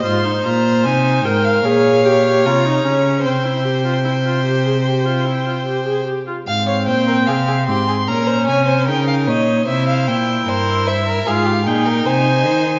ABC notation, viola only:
X:1
M:4/4
L:1/16
Q:1/4=75
K:Fm
V:1 name="Viola"
F E F2 E2 B2 A2 G2 F E D2 | C =E G F E F G A G F E F G A G F | C8 D4 E4 | =E2 E6 F2 _E6 |]